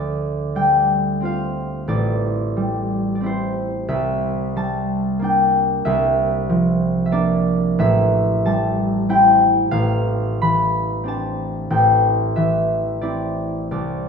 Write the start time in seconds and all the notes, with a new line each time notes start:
Already playing: D2 F3 C4 D4 E4 D5 E5
0.55 G3 G5
1.21 C4 F4
1.25 F5
1.88 A1 D5
2.57 G3
3.15 D5
3.21 C4 E4
3.26 C5
3.88 C2 E5
4.56 G3 A5
5.19 A#3 D4
5.24 G5
5.85 C2 E5
6.49 F3
7.06 E5
7.12 A#3 D4 D5
7.79 A1 E5
8.46 G3 A5
9.09 C4 E4 G5
9.71 A1 F5
10.42 E3 B5
11.04 C4 D4
11.08 A5
11.70 A1 G5
12.36 E3 E5
13.01 C4 E4 D5
13.71 C2 D5